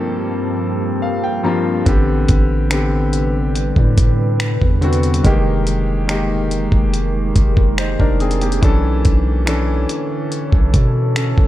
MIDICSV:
0, 0, Header, 1, 5, 480
1, 0, Start_track
1, 0, Tempo, 845070
1, 1058, Time_signature, 4, 2, 24, 8
1, 6518, End_track
2, 0, Start_track
2, 0, Title_t, "Ambient pad"
2, 0, Program_c, 0, 92
2, 0, Note_on_c, 0, 43, 80
2, 0, Note_on_c, 0, 53, 76
2, 0, Note_on_c, 0, 58, 73
2, 0, Note_on_c, 0, 60, 71
2, 0, Note_on_c, 0, 67, 89
2, 1040, Note_off_c, 0, 43, 0
2, 1040, Note_off_c, 0, 58, 0
2, 1041, Note_off_c, 0, 53, 0
2, 1041, Note_off_c, 0, 60, 0
2, 1041, Note_off_c, 0, 67, 0
2, 1058, Note_on_c, 0, 55, 82
2, 1058, Note_on_c, 0, 62, 74
2, 1059, Note_on_c, 0, 48, 72
2, 1059, Note_on_c, 0, 71, 85
2, 2959, Note_off_c, 0, 48, 0
2, 2959, Note_off_c, 0, 55, 0
2, 2959, Note_off_c, 0, 62, 0
2, 2960, Note_off_c, 0, 71, 0
2, 2980, Note_on_c, 0, 56, 82
2, 2980, Note_on_c, 0, 63, 71
2, 2980, Note_on_c, 0, 67, 72
2, 2981, Note_on_c, 0, 70, 91
2, 4880, Note_off_c, 0, 56, 0
2, 4880, Note_off_c, 0, 63, 0
2, 4880, Note_off_c, 0, 67, 0
2, 4881, Note_off_c, 0, 70, 0
2, 4900, Note_on_c, 0, 50, 77
2, 4900, Note_on_c, 0, 52, 80
2, 4900, Note_on_c, 0, 73, 75
2, 4901, Note_on_c, 0, 69, 86
2, 6518, Note_off_c, 0, 50, 0
2, 6518, Note_off_c, 0, 52, 0
2, 6518, Note_off_c, 0, 69, 0
2, 6518, Note_off_c, 0, 73, 0
2, 6518, End_track
3, 0, Start_track
3, 0, Title_t, "Grand piano"
3, 0, Program_c, 1, 0
3, 0, Control_c, 1, 64, 127
3, 0, Note_on_c, 1, 43, 79
3, 0, Note_on_c, 1, 53, 74
3, 0, Note_on_c, 1, 58, 77
3, 0, Note_on_c, 1, 60, 72
3, 0, Note_on_c, 1, 69, 87
3, 376, Note_off_c, 1, 43, 0
3, 378, Note_off_c, 1, 53, 0
3, 380, Note_off_c, 1, 58, 0
3, 382, Note_off_c, 1, 60, 0
3, 384, Note_off_c, 1, 69, 0
3, 580, Note_on_c, 1, 77, 68
3, 691, Note_off_c, 1, 77, 0
3, 702, Note_on_c, 1, 79, 67
3, 812, Note_off_c, 1, 79, 0
3, 813, Note_on_c, 1, 43, 72
3, 817, Note_on_c, 1, 53, 70
3, 821, Note_on_c, 1, 58, 69
3, 821, Note_on_c, 1, 82, 67
3, 825, Note_on_c, 1, 60, 65
3, 830, Note_on_c, 1, 65, 83
3, 1006, Note_off_c, 1, 43, 0
3, 1008, Note_off_c, 1, 53, 0
3, 1010, Note_off_c, 1, 58, 0
3, 1012, Note_off_c, 1, 60, 0
3, 1014, Note_off_c, 1, 65, 0
3, 1043, Note_off_c, 1, 82, 0
3, 1054, Note_on_c, 1, 50, 87
3, 1060, Note_on_c, 1, 59, 73
3, 1065, Note_on_c, 1, 60, 73
3, 1066, Control_c, 1, 64, 0
3, 1070, Note_on_c, 1, 67, 90
3, 1173, Control_c, 1, 64, 127
3, 1436, Note_off_c, 1, 50, 0
3, 1439, Note_off_c, 1, 59, 0
3, 1442, Note_off_c, 1, 60, 0
3, 1445, Note_off_c, 1, 67, 0
3, 1533, Note_on_c, 1, 50, 79
3, 1538, Note_on_c, 1, 59, 74
3, 1544, Note_on_c, 1, 60, 72
3, 1549, Note_on_c, 1, 67, 88
3, 2297, Note_off_c, 1, 50, 0
3, 2299, Note_off_c, 1, 59, 0
3, 2302, Note_off_c, 1, 60, 0
3, 2305, Note_off_c, 1, 67, 0
3, 2733, Note_on_c, 1, 50, 76
3, 2738, Note_on_c, 1, 59, 70
3, 2744, Note_on_c, 1, 60, 66
3, 2749, Note_on_c, 1, 66, 83
3, 2926, Note_off_c, 1, 50, 0
3, 2928, Note_off_c, 1, 59, 0
3, 2931, Note_off_c, 1, 60, 0
3, 2934, Note_off_c, 1, 66, 0
3, 2973, Note_on_c, 1, 51, 85
3, 2978, Note_on_c, 1, 56, 79
3, 2984, Note_on_c, 1, 58, 76
3, 2986, Control_c, 1, 64, 0
3, 2990, Note_on_c, 1, 67, 92
3, 3091, Control_c, 1, 64, 127
3, 3356, Note_off_c, 1, 51, 0
3, 3359, Note_off_c, 1, 56, 0
3, 3362, Note_off_c, 1, 58, 0
3, 3364, Note_off_c, 1, 67, 0
3, 3451, Note_on_c, 1, 51, 79
3, 3457, Note_on_c, 1, 56, 74
3, 3462, Note_on_c, 1, 58, 76
3, 3468, Note_on_c, 1, 67, 88
3, 4216, Note_off_c, 1, 51, 0
3, 4219, Note_off_c, 1, 56, 0
3, 4221, Note_off_c, 1, 58, 0
3, 4224, Note_off_c, 1, 67, 0
3, 4422, Note_on_c, 1, 72, 64
3, 4425, Note_on_c, 1, 63, 55
3, 4534, Note_off_c, 1, 72, 0
3, 4536, Note_off_c, 1, 63, 0
3, 4542, Note_on_c, 1, 70, 65
3, 4546, Note_on_c, 1, 62, 61
3, 4654, Note_off_c, 1, 70, 0
3, 4656, Note_off_c, 1, 62, 0
3, 4661, Note_on_c, 1, 68, 70
3, 4665, Note_on_c, 1, 60, 59
3, 4774, Note_off_c, 1, 68, 0
3, 4776, Note_off_c, 1, 60, 0
3, 4782, Note_on_c, 1, 67, 65
3, 4785, Note_on_c, 1, 58, 52
3, 4892, Note_on_c, 1, 52, 87
3, 4898, Note_on_c, 1, 61, 77
3, 4904, Note_on_c, 1, 62, 73
3, 4905, Control_c, 1, 64, 0
3, 4910, Note_on_c, 1, 69, 92
3, 5008, Note_off_c, 1, 67, 0
3, 5010, Note_off_c, 1, 58, 0
3, 5010, Control_c, 1, 64, 127
3, 5276, Note_off_c, 1, 52, 0
3, 5279, Note_off_c, 1, 61, 0
3, 5282, Note_off_c, 1, 62, 0
3, 5284, Note_off_c, 1, 69, 0
3, 5373, Note_on_c, 1, 52, 81
3, 5378, Note_on_c, 1, 61, 74
3, 5383, Note_on_c, 1, 62, 73
3, 5388, Note_on_c, 1, 69, 91
3, 6136, Note_off_c, 1, 52, 0
3, 6139, Note_off_c, 1, 61, 0
3, 6142, Note_off_c, 1, 62, 0
3, 6144, Note_off_c, 1, 69, 0
3, 6341, Note_on_c, 1, 69, 66
3, 6345, Note_on_c, 1, 61, 56
3, 6518, Note_off_c, 1, 61, 0
3, 6518, Note_off_c, 1, 69, 0
3, 6518, End_track
4, 0, Start_track
4, 0, Title_t, "808-style bass"
4, 0, Program_c, 2, 38
4, 1060, Note_on_c, 2, 33, 102
4, 1290, Note_off_c, 2, 33, 0
4, 1302, Note_on_c, 2, 33, 103
4, 2117, Note_off_c, 2, 33, 0
4, 2139, Note_on_c, 2, 45, 99
4, 2599, Note_off_c, 2, 45, 0
4, 2623, Note_on_c, 2, 40, 100
4, 2966, Note_off_c, 2, 40, 0
4, 2981, Note_on_c, 2, 29, 108
4, 3797, Note_off_c, 2, 29, 0
4, 3818, Note_on_c, 2, 29, 89
4, 4164, Note_off_c, 2, 29, 0
4, 4181, Note_on_c, 2, 29, 84
4, 4525, Note_off_c, 2, 29, 0
4, 4543, Note_on_c, 2, 29, 106
4, 4887, Note_off_c, 2, 29, 0
4, 4901, Note_on_c, 2, 35, 106
4, 5130, Note_off_c, 2, 35, 0
4, 5143, Note_on_c, 2, 35, 110
4, 5601, Note_off_c, 2, 35, 0
4, 5980, Note_on_c, 2, 35, 96
4, 6094, Note_off_c, 2, 35, 0
4, 6101, Note_on_c, 2, 47, 94
4, 6445, Note_off_c, 2, 47, 0
4, 6463, Note_on_c, 2, 35, 100
4, 6518, Note_off_c, 2, 35, 0
4, 6518, End_track
5, 0, Start_track
5, 0, Title_t, "Drums"
5, 1058, Note_on_c, 9, 42, 60
5, 1059, Note_on_c, 9, 36, 109
5, 1115, Note_off_c, 9, 42, 0
5, 1116, Note_off_c, 9, 36, 0
5, 1298, Note_on_c, 9, 42, 62
5, 1301, Note_on_c, 9, 36, 91
5, 1355, Note_off_c, 9, 42, 0
5, 1357, Note_off_c, 9, 36, 0
5, 1538, Note_on_c, 9, 26, 119
5, 1538, Note_on_c, 9, 42, 73
5, 1595, Note_off_c, 9, 26, 0
5, 1595, Note_off_c, 9, 42, 0
5, 1778, Note_on_c, 9, 42, 76
5, 1835, Note_off_c, 9, 42, 0
5, 2019, Note_on_c, 9, 42, 66
5, 2076, Note_off_c, 9, 42, 0
5, 2137, Note_on_c, 9, 36, 83
5, 2194, Note_off_c, 9, 36, 0
5, 2258, Note_on_c, 9, 42, 71
5, 2259, Note_on_c, 9, 36, 102
5, 2315, Note_off_c, 9, 42, 0
5, 2316, Note_off_c, 9, 36, 0
5, 2499, Note_on_c, 9, 26, 107
5, 2499, Note_on_c, 9, 42, 59
5, 2555, Note_off_c, 9, 42, 0
5, 2556, Note_off_c, 9, 26, 0
5, 2621, Note_on_c, 9, 36, 91
5, 2678, Note_off_c, 9, 36, 0
5, 2738, Note_on_c, 9, 42, 38
5, 2795, Note_off_c, 9, 42, 0
5, 2798, Note_on_c, 9, 42, 46
5, 2855, Note_off_c, 9, 42, 0
5, 2859, Note_on_c, 9, 42, 57
5, 2915, Note_off_c, 9, 42, 0
5, 2919, Note_on_c, 9, 42, 67
5, 2976, Note_off_c, 9, 42, 0
5, 2979, Note_on_c, 9, 42, 63
5, 2980, Note_on_c, 9, 36, 108
5, 3036, Note_off_c, 9, 42, 0
5, 3037, Note_off_c, 9, 36, 0
5, 3219, Note_on_c, 9, 42, 60
5, 3276, Note_off_c, 9, 42, 0
5, 3459, Note_on_c, 9, 26, 122
5, 3459, Note_on_c, 9, 42, 75
5, 3516, Note_off_c, 9, 26, 0
5, 3516, Note_off_c, 9, 42, 0
5, 3699, Note_on_c, 9, 42, 71
5, 3756, Note_off_c, 9, 42, 0
5, 3817, Note_on_c, 9, 36, 94
5, 3874, Note_off_c, 9, 36, 0
5, 3939, Note_on_c, 9, 42, 67
5, 3996, Note_off_c, 9, 42, 0
5, 4178, Note_on_c, 9, 42, 71
5, 4179, Note_on_c, 9, 36, 102
5, 4235, Note_off_c, 9, 42, 0
5, 4236, Note_off_c, 9, 36, 0
5, 4299, Note_on_c, 9, 36, 91
5, 4356, Note_off_c, 9, 36, 0
5, 4419, Note_on_c, 9, 26, 105
5, 4419, Note_on_c, 9, 42, 56
5, 4476, Note_off_c, 9, 26, 0
5, 4476, Note_off_c, 9, 42, 0
5, 4542, Note_on_c, 9, 36, 92
5, 4598, Note_off_c, 9, 36, 0
5, 4659, Note_on_c, 9, 42, 37
5, 4716, Note_off_c, 9, 42, 0
5, 4719, Note_on_c, 9, 42, 47
5, 4776, Note_off_c, 9, 42, 0
5, 4779, Note_on_c, 9, 42, 54
5, 4836, Note_off_c, 9, 42, 0
5, 4839, Note_on_c, 9, 42, 64
5, 4896, Note_off_c, 9, 42, 0
5, 4900, Note_on_c, 9, 36, 109
5, 4900, Note_on_c, 9, 42, 59
5, 4956, Note_off_c, 9, 42, 0
5, 4957, Note_off_c, 9, 36, 0
5, 5139, Note_on_c, 9, 42, 63
5, 5142, Note_on_c, 9, 36, 84
5, 5196, Note_off_c, 9, 42, 0
5, 5198, Note_off_c, 9, 36, 0
5, 5380, Note_on_c, 9, 26, 119
5, 5380, Note_on_c, 9, 42, 73
5, 5437, Note_off_c, 9, 26, 0
5, 5437, Note_off_c, 9, 42, 0
5, 5619, Note_on_c, 9, 42, 76
5, 5676, Note_off_c, 9, 42, 0
5, 5860, Note_on_c, 9, 42, 65
5, 5917, Note_off_c, 9, 42, 0
5, 5978, Note_on_c, 9, 36, 81
5, 6035, Note_off_c, 9, 36, 0
5, 6099, Note_on_c, 9, 36, 104
5, 6099, Note_on_c, 9, 42, 73
5, 6156, Note_off_c, 9, 36, 0
5, 6156, Note_off_c, 9, 42, 0
5, 6339, Note_on_c, 9, 26, 107
5, 6339, Note_on_c, 9, 42, 58
5, 6396, Note_off_c, 9, 26, 0
5, 6396, Note_off_c, 9, 42, 0
5, 6462, Note_on_c, 9, 36, 95
5, 6518, Note_off_c, 9, 36, 0
5, 6518, End_track
0, 0, End_of_file